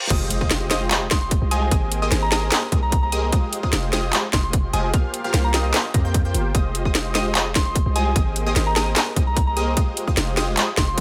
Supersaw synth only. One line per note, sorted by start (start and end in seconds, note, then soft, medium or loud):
0.10 0.39 G#3 medium
0.10 0.39 F4 medium
0.10 0.39 G4 medium
0.10 0.39 C5 medium
0.10 0.39 D#5 medium
0.41 0.68 G#3 medium
0.41 0.68 F4 medium
0.41 0.68 G4 medium
0.41 0.68 C5 medium
0.41 0.68 D#5 medium
0.71 0.89 G#3 loud
0.71 0.89 F4 medium
0.71 0.89 G4 medium
0.71 0.89 C5 medium
0.71 0.89 D#5 loud
0.91 1.01 G#3 medium
0.91 1.01 F4 medium
0.91 1.01 G4 medium
0.91 1.01 C5 medium
0.91 1.01 D#5 loud
1.11 1.49 G#3 medium
1.11 1.49 F4 medium
1.11 1.49 G4 medium
1.11 1.49 C5 medium
1.11 1.49 D#5 loud
1.51 1.69 G#3 medium
1.51 1.69 F4 medium
1.51 1.69 G4 medium
1.51 1.69 C5 medium
1.51 1.69 D#5 loud
1.71 2.00 A#3 medium
1.71 2.00 G4 medium
1.71 2.00 C5 medium
1.71 2.00 D#5 medium
2.02 2.30 A#3 medium
2.02 2.30 G4 medium
2.02 2.30 G#4 medium
2.02 2.30 C5 medium
2.02 2.30 D#5 medium
2.32 2.50 A#3 loud
2.32 2.50 G4 medium
2.32 2.50 G#4 medium
2.32 2.50 C5 medium
2.32 2.50 D#5 loud
2.52 2.62 A#3 medium
2.52 2.62 G4 medium
2.52 2.62 G#4 medium
2.52 2.62 C5 medium
2.52 2.62 D#5 loud
2.72 3.10 A#3 medium
2.72 3.10 G4 medium
2.72 3.10 G#4 medium
2.72 3.10 C5 medium
2.72 3.10 D#5 loud
3.12 3.30 A#3 medium
3.12 3.30 G4 medium
3.12 3.30 G#4 medium
3.12 3.30 C5 medium
3.12 3.30 D#5 loud
3.33 3.61 G#3 medium
3.33 3.61 F4 medium
3.33 3.61 G4 medium
3.33 3.61 C5 medium
3.33 3.61 D#5 medium
3.63 3.91 G#3 medium
3.63 3.91 F4 medium
3.63 3.91 G4 medium
3.63 3.91 C5 medium
3.63 3.91 D#5 medium
3.93 4.11 G#3 loud
3.93 4.11 F4 medium
3.93 4.11 G4 medium
3.93 4.11 C5 medium
3.93 4.11 D#5 loud
4.13 4.23 G#3 medium
4.13 4.23 F4 medium
4.13 4.23 G4 medium
4.13 4.23 C5 medium
4.13 4.23 D#5 loud
4.33 4.71 G#3 medium
4.33 4.71 F4 medium
4.33 4.71 G4 medium
4.33 4.71 C5 medium
4.33 4.71 D#5 loud
4.73 4.91 G#3 medium
4.73 4.91 F4 medium
4.73 4.91 G4 medium
4.73 4.91 C5 medium
4.73 4.91 D#5 loud
4.94 5.22 A#3 medium
4.94 5.22 F4 medium
4.94 5.22 C5 medium
4.94 5.22 F5 medium
5.24 5.52 A#3 medium
5.24 5.52 F4 medium
5.24 5.52 G4 medium
5.24 5.52 C5 medium
5.24 5.52 F5 medium
5.54 5.72 A#3 loud
5.54 5.72 F4 medium
5.54 5.72 G4 medium
5.54 5.72 C5 medium
5.54 5.72 D#5 loud
5.74 5.84 A#3 medium
5.74 5.84 F4 medium
5.74 5.84 G4 medium
5.74 5.84 C5 medium
5.74 5.84 D#5 loud
5.94 6.02 A#3 medium
5.94 6.02 F4 medium
5.94 6.02 G4 medium
5.94 6.02 C5 medium
5.94 6.02 A#5 medium
6.05 6.22 A#3 medium
6.05 6.22 F4 medium
6.05 6.22 G4 medium
6.05 6.22 C5 medium
6.05 6.22 G5 loud
6.25 6.52 A#3 medium
6.25 6.52 F4 medium
6.25 6.52 G4 medium
6.25 6.52 C5 medium
6.25 6.52 G5 medium
6.55 6.83 G#3 medium
6.55 6.83 F4 medium
6.55 6.83 G4 medium
6.55 6.83 C5 medium
6.55 6.83 D#5 medium
6.85 7.13 G#3 medium
6.85 7.13 F4 medium
6.85 7.13 G4 medium
6.85 7.13 C5 medium
6.85 7.13 D#5 medium
7.15 7.33 G#3 loud
7.15 7.33 F4 medium
7.15 7.33 G4 medium
7.15 7.33 C5 medium
7.15 7.33 D#5 loud
7.35 7.45 G#3 medium
7.35 7.45 F4 medium
7.35 7.45 G4 medium
7.35 7.45 C5 medium
7.35 7.45 D#5 loud
7.55 7.93 G#3 medium
7.55 7.93 F4 medium
7.55 7.93 D#5 loud
7.96 8.13 G#3 medium
7.96 8.13 F4 medium
7.96 8.13 G4 medium
7.96 8.13 C5 medium
7.96 8.13 D#5 loud
8.16 8.44 A#3 medium
8.16 8.44 G4 medium
8.16 8.44 G#4 medium
8.16 8.44 C5 medium
8.16 8.44 D#5 medium
8.46 8.74 A#3 medium
8.46 8.74 G4 medium
8.46 8.74 G#4 medium
8.46 8.74 C5 medium
8.46 8.74 D#5 medium
8.76 8.94 A#3 loud
8.76 8.94 G4 medium
8.76 8.94 G#4 medium
8.76 8.94 C5 medium
8.76 8.94 D#5 loud
8.96 9.06 A#3 medium
8.96 9.06 G4 medium
8.96 9.06 G#4 medium
8.96 9.06 C5 medium
8.96 9.06 D#5 loud
9.16 9.54 A#3 medium
9.16 9.54 G4 medium
9.16 9.54 G#4 medium
9.16 9.54 C5 medium
9.16 9.54 D#5 loud
9.57 9.75 A#3 medium
9.57 9.75 G4 medium
9.57 9.75 G#4 medium
9.57 9.75 C5 medium
9.57 9.75 D#5 loud
9.77 10.05 G#3 medium
9.77 10.05 F4 medium
9.77 10.05 G4 medium
9.77 10.05 C5 medium
9.77 10.05 D#5 medium
10.08 10.35 G#3 medium
10.08 10.35 F4 medium
10.08 10.35 G4 medium
10.08 10.35 C5 medium
10.08 10.35 D#5 medium
10.37 10.55 G#3 medium
10.37 10.55 F4 medium
10.37 10.55 G4 medium
10.37 10.55 C5 medium
10.37 10.55 D#5 loud
10.57 10.67 G#3 loud
10.57 10.67 F4 medium
10.57 10.67 G4 medium
10.57 10.67 C5 medium
10.57 10.67 D#5 loud
10.77 11.01 G#3 medium
10.77 11.01 F4 medium
10.77 11.01 G4 medium
10.77 11.01 C5 medium
10.77 11.01 D#5 loud